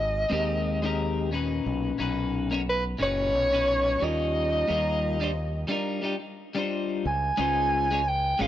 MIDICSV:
0, 0, Header, 1, 4, 480
1, 0, Start_track
1, 0, Tempo, 674157
1, 1184, Time_signature, 4, 2, 24, 8
1, 6035, End_track
2, 0, Start_track
2, 0, Title_t, "Soprano saxophone"
2, 0, Program_c, 0, 64
2, 0, Note_on_c, 0, 75, 92
2, 955, Note_off_c, 0, 75, 0
2, 1917, Note_on_c, 0, 71, 83
2, 2023, Note_off_c, 0, 71, 0
2, 2158, Note_on_c, 0, 73, 110
2, 2873, Note_on_c, 0, 75, 111
2, 2883, Note_off_c, 0, 73, 0
2, 4069, Note_off_c, 0, 75, 0
2, 5036, Note_on_c, 0, 80, 103
2, 5753, Note_on_c, 0, 79, 88
2, 5764, Note_off_c, 0, 80, 0
2, 5991, Note_on_c, 0, 77, 108
2, 6002, Note_off_c, 0, 79, 0
2, 6035, Note_off_c, 0, 77, 0
2, 6035, End_track
3, 0, Start_track
3, 0, Title_t, "Clean electric guitar"
3, 0, Program_c, 1, 27
3, 212, Note_on_c, 1, 56, 82
3, 218, Note_on_c, 1, 60, 77
3, 224, Note_on_c, 1, 63, 77
3, 231, Note_on_c, 1, 67, 79
3, 237, Note_on_c, 1, 70, 95
3, 561, Note_off_c, 1, 56, 0
3, 564, Note_off_c, 1, 60, 0
3, 567, Note_off_c, 1, 63, 0
3, 570, Note_off_c, 1, 67, 0
3, 573, Note_off_c, 1, 70, 0
3, 585, Note_on_c, 1, 56, 94
3, 591, Note_on_c, 1, 60, 81
3, 595, Note_on_c, 1, 63, 88
3, 603, Note_on_c, 1, 67, 83
3, 610, Note_on_c, 1, 70, 105
3, 912, Note_off_c, 1, 56, 0
3, 915, Note_off_c, 1, 60, 0
3, 917, Note_off_c, 1, 63, 0
3, 921, Note_off_c, 1, 67, 0
3, 924, Note_off_c, 1, 70, 0
3, 933, Note_on_c, 1, 46, 75
3, 939, Note_on_c, 1, 61, 64
3, 945, Note_on_c, 1, 63, 69
3, 952, Note_on_c, 1, 66, 66
3, 955, Note_off_c, 1, 66, 0
3, 958, Note_on_c, 1, 71, 78
3, 1393, Note_off_c, 1, 46, 0
3, 1397, Note_off_c, 1, 61, 0
3, 1399, Note_off_c, 1, 63, 0
3, 1406, Note_off_c, 1, 71, 0
3, 1410, Note_on_c, 1, 46, 81
3, 1417, Note_on_c, 1, 61, 75
3, 1423, Note_on_c, 1, 63, 76
3, 1430, Note_on_c, 1, 66, 76
3, 1432, Note_off_c, 1, 66, 0
3, 1435, Note_on_c, 1, 71, 96
3, 1760, Note_off_c, 1, 46, 0
3, 1763, Note_off_c, 1, 61, 0
3, 1766, Note_off_c, 1, 63, 0
3, 1772, Note_off_c, 1, 71, 0
3, 1786, Note_on_c, 1, 58, 89
3, 1793, Note_on_c, 1, 61, 89
3, 1798, Note_on_c, 1, 63, 83
3, 1803, Note_on_c, 1, 66, 82
3, 1810, Note_on_c, 1, 73, 108
3, 1851, Note_off_c, 1, 58, 0
3, 1855, Note_off_c, 1, 61, 0
3, 1857, Note_off_c, 1, 63, 0
3, 1860, Note_off_c, 1, 66, 0
3, 1864, Note_off_c, 1, 73, 0
3, 2126, Note_on_c, 1, 46, 85
3, 2133, Note_on_c, 1, 61, 77
3, 2139, Note_on_c, 1, 63, 82
3, 2145, Note_on_c, 1, 66, 80
3, 2149, Note_off_c, 1, 66, 0
3, 2152, Note_on_c, 1, 71, 93
3, 2478, Note_off_c, 1, 46, 0
3, 2481, Note_off_c, 1, 61, 0
3, 2484, Note_off_c, 1, 63, 0
3, 2491, Note_off_c, 1, 71, 0
3, 2503, Note_on_c, 1, 46, 90
3, 2510, Note_on_c, 1, 61, 90
3, 2516, Note_on_c, 1, 63, 85
3, 2523, Note_on_c, 1, 66, 82
3, 2527, Note_off_c, 1, 66, 0
3, 2530, Note_on_c, 1, 71, 99
3, 2831, Note_off_c, 1, 46, 0
3, 2835, Note_off_c, 1, 61, 0
3, 2838, Note_off_c, 1, 63, 0
3, 2844, Note_off_c, 1, 71, 0
3, 2850, Note_on_c, 1, 55, 70
3, 2856, Note_on_c, 1, 61, 68
3, 2861, Note_on_c, 1, 63, 65
3, 2868, Note_on_c, 1, 65, 67
3, 2875, Note_on_c, 1, 70, 75
3, 3312, Note_off_c, 1, 55, 0
3, 3315, Note_off_c, 1, 61, 0
3, 3318, Note_off_c, 1, 63, 0
3, 3321, Note_off_c, 1, 65, 0
3, 3324, Note_off_c, 1, 70, 0
3, 3328, Note_on_c, 1, 55, 86
3, 3336, Note_on_c, 1, 58, 78
3, 3342, Note_on_c, 1, 63, 76
3, 3348, Note_on_c, 1, 65, 78
3, 3355, Note_on_c, 1, 70, 95
3, 3679, Note_off_c, 1, 55, 0
3, 3683, Note_off_c, 1, 58, 0
3, 3686, Note_off_c, 1, 63, 0
3, 3689, Note_off_c, 1, 65, 0
3, 3692, Note_off_c, 1, 70, 0
3, 3703, Note_on_c, 1, 55, 91
3, 3709, Note_on_c, 1, 62, 85
3, 3716, Note_on_c, 1, 63, 81
3, 3722, Note_on_c, 1, 65, 85
3, 3729, Note_on_c, 1, 72, 107
3, 3770, Note_off_c, 1, 55, 0
3, 3773, Note_off_c, 1, 62, 0
3, 3776, Note_off_c, 1, 63, 0
3, 3779, Note_off_c, 1, 65, 0
3, 3783, Note_off_c, 1, 72, 0
3, 4046, Note_on_c, 1, 55, 85
3, 4050, Note_on_c, 1, 62, 81
3, 4057, Note_on_c, 1, 63, 74
3, 4063, Note_on_c, 1, 65, 82
3, 4070, Note_on_c, 1, 70, 97
3, 4274, Note_off_c, 1, 55, 0
3, 4276, Note_off_c, 1, 62, 0
3, 4280, Note_off_c, 1, 63, 0
3, 4282, Note_off_c, 1, 65, 0
3, 4284, Note_on_c, 1, 55, 82
3, 4286, Note_off_c, 1, 70, 0
3, 4292, Note_on_c, 1, 62, 74
3, 4297, Note_on_c, 1, 63, 76
3, 4303, Note_on_c, 1, 65, 76
3, 4310, Note_on_c, 1, 67, 90
3, 4370, Note_off_c, 1, 55, 0
3, 4374, Note_off_c, 1, 62, 0
3, 4376, Note_off_c, 1, 63, 0
3, 4379, Note_off_c, 1, 65, 0
3, 4383, Note_off_c, 1, 67, 0
3, 4661, Note_on_c, 1, 55, 76
3, 4667, Note_on_c, 1, 62, 75
3, 4676, Note_on_c, 1, 63, 69
3, 4681, Note_on_c, 1, 65, 70
3, 4688, Note_on_c, 1, 72, 85
3, 5003, Note_off_c, 1, 55, 0
3, 5006, Note_off_c, 1, 62, 0
3, 5010, Note_off_c, 1, 63, 0
3, 5013, Note_off_c, 1, 65, 0
3, 5016, Note_off_c, 1, 72, 0
3, 5250, Note_on_c, 1, 56, 90
3, 5255, Note_on_c, 1, 61, 75
3, 5261, Note_on_c, 1, 63, 72
3, 5269, Note_on_c, 1, 65, 82
3, 5276, Note_on_c, 1, 72, 89
3, 5600, Note_off_c, 1, 56, 0
3, 5603, Note_off_c, 1, 61, 0
3, 5605, Note_off_c, 1, 63, 0
3, 5609, Note_off_c, 1, 65, 0
3, 5613, Note_off_c, 1, 72, 0
3, 5629, Note_on_c, 1, 56, 93
3, 5632, Note_on_c, 1, 61, 86
3, 5640, Note_on_c, 1, 63, 87
3, 5646, Note_on_c, 1, 65, 87
3, 5654, Note_on_c, 1, 73, 99
3, 5693, Note_off_c, 1, 56, 0
3, 5695, Note_off_c, 1, 61, 0
3, 5698, Note_off_c, 1, 63, 0
3, 5701, Note_off_c, 1, 65, 0
3, 5705, Note_off_c, 1, 73, 0
3, 5974, Note_on_c, 1, 56, 92
3, 5981, Note_on_c, 1, 61, 79
3, 5987, Note_on_c, 1, 63, 82
3, 5994, Note_on_c, 1, 65, 82
3, 6001, Note_on_c, 1, 72, 100
3, 6035, Note_off_c, 1, 56, 0
3, 6035, Note_off_c, 1, 61, 0
3, 6035, Note_off_c, 1, 63, 0
3, 6035, Note_off_c, 1, 65, 0
3, 6035, Note_off_c, 1, 72, 0
3, 6035, End_track
4, 0, Start_track
4, 0, Title_t, "Fingered electric bass"
4, 0, Program_c, 2, 33
4, 0, Note_on_c, 2, 32, 81
4, 173, Note_off_c, 2, 32, 0
4, 225, Note_on_c, 2, 39, 82
4, 1135, Note_off_c, 2, 39, 0
4, 1184, Note_on_c, 2, 35, 93
4, 1361, Note_off_c, 2, 35, 0
4, 1424, Note_on_c, 2, 35, 82
4, 2094, Note_off_c, 2, 35, 0
4, 2145, Note_on_c, 2, 30, 89
4, 2383, Note_off_c, 2, 30, 0
4, 2383, Note_on_c, 2, 35, 90
4, 2814, Note_off_c, 2, 35, 0
4, 2864, Note_on_c, 2, 39, 81
4, 3294, Note_off_c, 2, 39, 0
4, 3345, Note_on_c, 2, 39, 83
4, 4014, Note_off_c, 2, 39, 0
4, 5023, Note_on_c, 2, 37, 97
4, 5201, Note_off_c, 2, 37, 0
4, 5263, Note_on_c, 2, 37, 81
4, 5933, Note_off_c, 2, 37, 0
4, 5984, Note_on_c, 2, 32, 90
4, 6035, Note_off_c, 2, 32, 0
4, 6035, End_track
0, 0, End_of_file